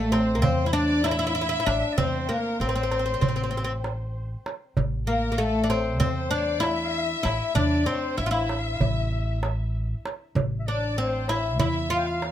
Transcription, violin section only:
Already playing: A4
0.13 C5
0.44 C5
0.75 D5
1.06 E5
1.99 C5
2.29 A#4
2.61 C5
5.08 A#4
5.39 A4
5.70 C5
6.02 C5
6.34 D5
6.64 E5
7.58 D5
7.88 C5
8.20 E5
8.33 E5
10.68 D5
10.98 C5
11.30 E5
11.60 E5
11.92 F5

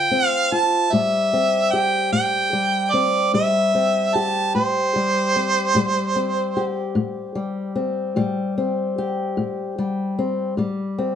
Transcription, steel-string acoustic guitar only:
Already playing: D3 C4 F4
0.11 C4
0.52 F4
0.93 A2 G3
1.33 C4
1.73 G4
2.12 A2
2.53 G3
2.94 C4
3.34 A2 G3
3.75 C4
4.15 G4
4.55 A2
4.96 G3
5.36 C4
5.75 A2 G3
6.16 C4
6.57 G4
6.95 A2
7.35 G3
7.76 C4
8.16 A2 G3
8.58 C4
8.98 G4
9.37 A2
9.78 G3
10.19 C4
10.57 A2 G3
10.98 C4

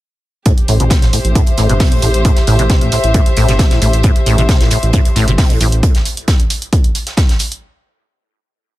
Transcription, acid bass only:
0.46 A2
0.68 A2
0.80 B2
0.91 C3
1.02 A2
1.13 A2
1.35 A2
1.58 A2
1.70 B2
1.80 C3
1.92 A2
2.03 A2
2.25 A2
2.48 A2
2.59 B2
2.70 C3
2.82 A2
2.92 A2
3.15 A2
3.37 A2
3.49 B2
3.59 C3
3.71 A2
3.82 A2
4.04 A2
4.26 A2
4.38 B2
4.49 C3
4.61 A2
4.71 A2
4.93 A2
5.16 A2
5.28 B2
5.38 C3
5.50 A2
5.61 A2

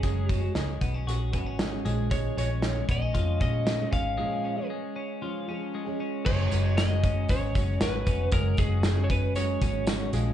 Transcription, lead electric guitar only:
Already playing: G#4
0.32 F#4
2.11 C#5
2.38 C#5
2.91 D#5
3.42 D#5
3.93 F5
6.26 C#5
6.77 D#5
7.30 C#5
7.82 B4
8.33 A#4
8.59 G#4
9.04 C#5
9.11 B4
9.36 C#5

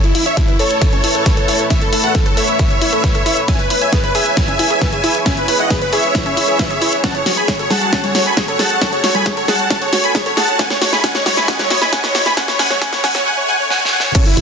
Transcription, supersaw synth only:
0.04 E4
0.15 E4
0.26 C#5 E5
0.37 E4
0.48 E4
0.59 A4 C#5
1.70 C#5 E5
1.81 A4
1.93 A4
2.03 A4 F#5
2.15 A4
2.26 A4
2.37 C#5 E5
3.48 E5 G#5
3.59 B4
3.70 B4
3.81 E5 G#5
3.93 B4
4.04 B4
4.15 E5 G#5
5.26 E5 G#5
5.37 B4
5.48 B4
5.60 D#5 F#5
5.71 B4
5.82 B4
5.93 C#5 E5
7.04 F#5 A5
7.15 C#5
7.27 C#5
7.37 G#5 B5
7.49 C#5
7.60 C#5
7.71 F#5 A5
7.93 F#5 A5
8.04 C#5
8.15 C#5
8.26 G#5 B5
8.38 C#5
8.49 C#5
8.60 F#5 A5
8.82 F#5 A5
8.93 C#5
9.04 C#5
9.15 G#5 B5
9.26 C#5
9.37 C#5
9.48 F#5 A5
9.70 F#5 A5
9.82 C#5
9.93 C#5
10.04 G#5 B5
10.15 C#5
10.26 C#5
10.37 F#5 A5
10.59 F#5 G#5
10.70 C#5
10.81 C#5
10.93 G#5 B5
11.04 F#5 G#5
11.15 C#5
11.26 C#5
11.37 G#5 B5
11.48 F#5 G#5
11.59 C#5
11.70 C#5
11.81 G#5 B5
11.92 F#5 G#5
12.04 C#5
12.15 C#5
12.26 G#5 B5
12.37 F#5 G#5
12.48 C#5
12.59 F#5 G#5
12.70 C#5
12.81 F#5 G#5
12.92 C#5
13.04 F#5 G#5
13.15 C#5
13.26 F#5 G#5
13.37 C#5
13.48 F#5 G#5
13.59 C#5
13.70 F#5 G#5
13.81 C#5
13.92 F#5 G#5
14.03 C#5
14.14 A4 C#5
14.26 E4
14.37 E4

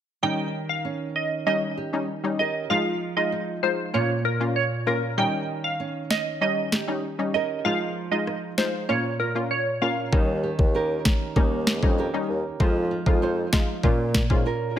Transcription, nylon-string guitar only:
0.23 D#3
0.85 C#4
1.77 G4
2.39 C#4 G4 A#4
2.70 F3
3.32 D#4
3.94 A#2
4.25 F4
4.87 C#4 F4 A#4
5.18 D#3
5.80 C#4
6.72 G4
7.34 C#4 G4 A#4
7.65 F3
8.27 D#4
8.89 A#2
9.20 F4
9.82 C#4 F4 A#4
10.12 D#3
10.43 G4
10.74 C#4 G4 A#4
11.36 A#3
11.98 C#4 G4 A#4
12.60 F3
12.91 F4
13.22 D#4 F4 C5
13.84 A#2
14.46 C#4 F4 A#4

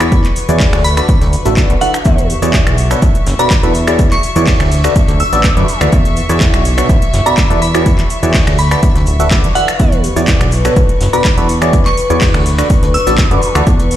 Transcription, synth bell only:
0.84 B5
0.97 B5
1.81 F#5
3.39 B5
4.12 C#6
5.20 E6
7.26 B5
7.62 B5
8.59 B5
8.72 B5
9.55 F#5
11.13 B5
11.86 C#6
12.94 E6

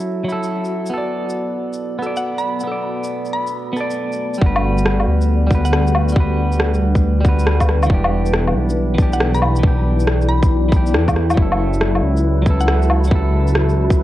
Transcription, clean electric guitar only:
Already playing: F#3 E4 A4
0.24 F#3 E4
0.32 A4
0.90 B3 A4
0.98 D5
1.99 B3 A4
2.07 D5
2.64 B3 A4
2.72 D5
3.73 B3 A4
3.80 D5
4.38 G3 F#4
4.46 B4
5.47 G3 F#4
5.55 B4
6.12 G3 F#4
6.20 B4
7.21 G3
7.25 F#4 B4
7.86 E3
7.90 D4
7.94 G4
8.94 E3 D4
9.02 G4
9.59 E3
9.63 D4
9.67 G4
10.69 E3 D4
10.76 G4
11.34 F#3
11.38 E4 A4
12.42 F#3
12.46 E4 A4
13.07 F#3
13.11 E4 A4

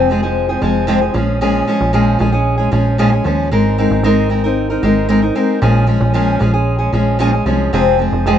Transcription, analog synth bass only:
Already playing: F1
0.62 F1
1.14 A#1
1.81 A#1
2.20 A#1
2.72 A#1
3.25 D#2
3.51 G#1
3.91 G#1
4.03 G#1
4.83 G#1
5.62 A#1
6.01 A#1
6.41 A#1
6.93 A#1
7.46 C2
7.73 F1
8.13 F1
8.26 F1

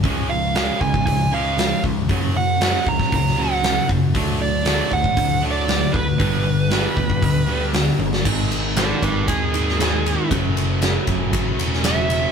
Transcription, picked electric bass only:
0.04 C#2
0.81 C#2
0.94 G#1
1.07 C#2
1.84 C#2
2.10 F#2
2.86 C#2
3.00 F#3
3.13 C#2
3.89 F#2
4.15 D2
4.92 D2
5.04 A1
5.17 D2
5.94 D2
6.20 G1
6.97 D2
7.10 G2
7.23 D2
7.99 G1
8.26 G#1
9.03 G#1
9.28 D#2
10.31 F#1
11.07 F#1
11.33 A1
11.59 E1

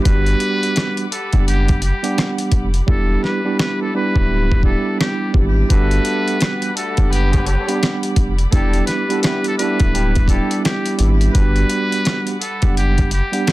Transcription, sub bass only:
0.06 G1
1.33 F#1
2.52 F1
2.88 E1
4.16 D1
5.34 G#1
5.70 G1
6.98 F#1
8.17 F1
8.53 E1
9.80 D1
11.00 G#1
11.35 G1
12.63 F#1

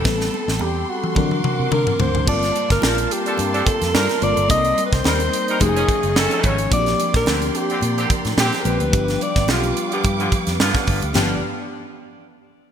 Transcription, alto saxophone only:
Already playing: A4
0.62 G4
0.90 F#4
1.73 A#4
2.01 C5
2.29 D5
2.72 A#4
3.12 G4
3.67 A4
3.95 A#4
4.23 D5
4.50 D#5
4.86 B4
4.93 C5
5.61 G#4
6.18 A4
6.46 C#5
6.73 D5
7.16 A#4
7.56 G4
8.40 G4
8.61 A#4
8.67 B4
9.23 D5
9.50 F4
9.93 G4
11.17 D4

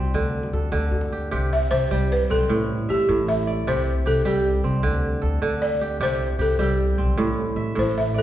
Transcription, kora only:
Already playing: C3 G3 C4 G4
0.14 D3
0.53 A4
0.72 D3
1.12 G4
1.31 C3 G4
1.71 G4
1.91 G3 G4
2.30 C4
2.49 A2
2.89 E5
3.09 A2
3.47 D5
3.67 C3 G4
4.06 G4
4.25 G3 G4
4.64 C4
4.83 D3
5.22 A4
5.42 D3
5.81 G4
6.00 C3 G4
6.39 G4
6.59 G3 G4
6.98 C4
7.18 A2
7.56 E5
7.75 A2
8.14 D5

